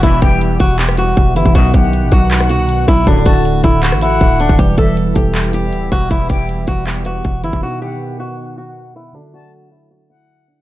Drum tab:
HH |x-o-x-x-x-x-x-x-|x-x-x-x-x-x-x-x-|x-o-x-x-x-x-x-x-|x-x-x-x-x-x-x-x-|
CP |--------x-------|--------x-------|--------x-------|--------x-------|
SD |---------r------|---------r------|---------r------|----------------|
BD |o-o---o-----o--o|o-o---o-------o-|o-o---o-----o--o|o-o---o-------o-|

HH |x-x-x-x-x-x-x-x-|----------------|----------------|
CP |--------x-------|----------------|----------------|
SD |----------------|----------------|----------------|
BD |o-o---o-----o--o|----------------|----------------|